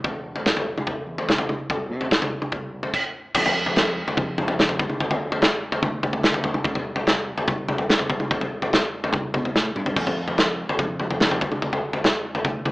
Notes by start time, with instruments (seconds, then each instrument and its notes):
0.04 fingered electric bass E1, kick, floor tom
0.36 floor tom
0.46 fingered electric bass B1, kick, snare
0.57 floor tom
0.78 mid tom
0.87 fingered electric bass E1, kick, floor tom
1.07 fingered electric bass E2
1.18 floor tom
1.28 fingered electric bass B1, kick, snare, mid tom
1.38 floor tom
1.49 mid tom
1.70 fingered electric bass C2, kick, floor tom
1.90 fingered electric bass C3
2.01 floor tom
2.11 fingered electric bass C2, kick, snare
2.22 floor tom, mid tom
2.42 mid tom
2.52 fingered electric bass C2, kick, floor tom
2.83 floor tom
2.94 kick, crash
3.35 fingered electric bass F2, kick, floor tom, crash
3.46 floor tom
3.66 floor tom
3.76 snare, floor tom
4.08 floor tom
4.17 fingered electric bass F2, kick, floor tom, mid tom
4.38 floor tom, mid tom
4.48 floor tom
4.59 snare, mid tom
4.69 floor tom
4.79 fingered electric bass D2, kick, floor tom
4.89 mid tom
5.00 floor tom
5.11 floor tom
5.32 floor tom
5.42 snare, floor tom
5.72 floor tom
5.82 fingered electric bass D2, kick, floor tom, mid tom
6.03 fingered electric bass D2, kick, floor tom, mid tom
6.13 floor tom
6.23 snare, mid tom
6.34 floor tom
6.44 floor tom
6.54 mid tom
6.64 fingered electric bass C2, kick, floor tom
6.75 floor tom
6.96 floor tom
7.07 snare, floor tom
7.38 floor tom
7.48 fingered electric bass C2, kick, floor tom, mid tom
7.68 floor tom, mid tom
7.78 floor tom
7.89 snare, mid tom
7.99 floor tom
8.10 fingered electric bass C2, kick, floor tom
8.20 mid tom
8.31 kick, floor tom
8.41 floor tom
8.62 floor tom
8.73 snare, floor tom
9.04 floor tom
9.13 fingered electric bass C2, kick, floor tom, mid tom
9.34 fingered electric bass B2, kick, floor tom, mid tom
9.45 floor tom
9.54 fingered electric bass A2, snare
9.75 fingered electric bass G2, mid tom
9.86 floor tom
9.96 fingered electric bass F2, kick, floor tom, splash
10.07 floor tom
10.28 floor tom
10.38 snare, floor tom
10.69 floor tom
10.79 fingered electric bass F2, kick, floor tom, mid tom
11.00 floor tom, mid tom
11.11 floor tom
11.20 snare, mid tom
11.31 floor tom
11.41 fingered electric bass D2, kick, floor tom
11.52 mid tom
11.62 floor tom
11.73 floor tom
11.93 floor tom
12.04 snare, floor tom
12.35 floor tom
12.45 fingered electric bass D2, kick, floor tom, mid tom
12.65 fingered electric bass D2, kick, floor tom, mid tom